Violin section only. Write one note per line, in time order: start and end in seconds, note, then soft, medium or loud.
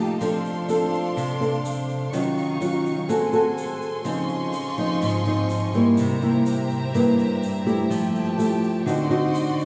0.00 0.19 D#4 medium
0.00 0.19 G4 medium
0.00 0.18 F5 medium
0.00 0.19 A5 medium
0.19 2.11 D4 medium
0.19 2.10 A4 medium
0.19 2.11 F5 medium
0.19 2.10 C6 medium
2.12 3.08 D#4 medium
2.12 3.08 F5 medium
2.12 3.08 C#6 medium
3.10 4.05 A4 medium
3.10 4.05 G#5 medium
3.10 5.96 C6 medium
4.06 5.97 F4 medium
4.06 5.97 D#5 medium
4.06 5.97 C#6 medium
5.98 7.88 G4 medium
5.98 7.89 C5 medium
5.98 8.84 E5 medium
5.98 7.89 A#5 medium
7.90 8.85 G4 medium
7.90 8.86 G5 medium
7.90 8.86 A5 medium
8.86 9.65 F#4 medium
8.86 9.65 D5 medium
8.86 9.65 D#5 medium
8.86 9.65 C6 medium